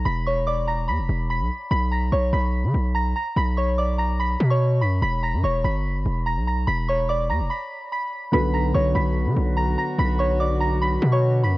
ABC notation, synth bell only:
X:1
M:4/4
L:1/16
Q:1/4=145
K:Bm
V:1 name="Synth bell"
[bb']2 [cc']2 [dd']2 [^a^a']2 [bb']4 [bb']4 | [bb']2 [^a^a']2 [cc']2 [bb']6 [aa']2 [aa']2 | [bb']2 [cc']2 [dd']2 [^a^a']2 [bb']3 [cc']3 [bb']2 | [bb']2 [^a^a']2 [cc']2 [bb']6 [aa']2 [aa']2 |
[bb']2 [cc']2 [dd']2 [^a^a']2 [bb']4 [bb']4 | [bb']2 [^a^a']2 [cc']2 [bb']6 [aa']2 [aa']2 | [bb']2 [cc']2 [dd']2 [^a^a']2 [bb']3 [cc']3 [bb']2 |]